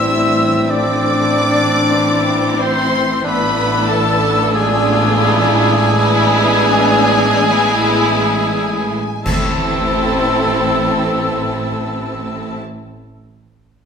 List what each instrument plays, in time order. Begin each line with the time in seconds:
Already playing: double bass section A1, cello section A2, viola section E3, bassoon C4, violin section D4 E6, french horn section E4, oboe E5, clarinet E5, flute E6
0.05 viola section G3
0.68 viola section F3 A3, french horn section D4, violin section D4 D6, oboe D5, clarinet D5
1.33 viola section E3
1.96 viola section B3, violin section C4 E4
2.60 viola section C4, french horn section C4, clarinet C5, oboe C5, violin section C6
3.23 double bass section A1, cello section A2, violin section B3 E4 B5, french horn section B3, bassoon D4, viola section D4, oboe B4, clarinet B4, flute E6
3.88 french horn section A3, oboe A4, clarinet A4, violin section A5
4.53 viola section D3 B3, french horn section G#3, violin section D4 F4 G#5, clarinet G#4, oboe G#4
5.21 violin section E4
5.92 viola section E3 B3, violin section E4
6.69 violin section D4
7.49 viola section E3 B3, violin section E4
9.23 double bass section A1, cello section A2, viola section E3 A3, french horn section A3, violin section C4 E4 A5, bassoon C4, oboe A4, clarinet A4, flute E6, concert bass drum, crash